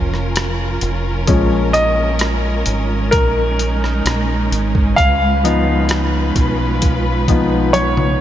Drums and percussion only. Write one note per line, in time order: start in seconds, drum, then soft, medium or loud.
0.14 cross-stick soft
0.36 cross-stick medium
0.36 closed hi-hat medium
0.81 closed hi-hat medium
1.27 kick medium
1.27 closed hi-hat medium
1.74 closed hi-hat medium
2.19 cross-stick medium
2.19 closed hi-hat medium
2.66 closed hi-hat medium
3.12 kick medium
3.12 closed hi-hat medium
3.59 closed hi-hat medium
3.84 cross-stick soft
4.06 cross-stick medium
4.06 closed hi-hat medium
4.52 closed hi-hat medium
4.75 kick medium
4.98 kick medium
4.98 closed hi-hat medium
5.45 closed hi-hat medium
5.89 cross-stick loud
5.89 closed hi-hat medium
6.36 kick medium
6.36 closed hi-hat medium
6.82 kick medium
6.82 closed hi-hat medium
7.28 kick medium
7.28 closed hi-hat medium
7.74 closed hi-hat medium
7.74 high tom soft
7.97 mid tom medium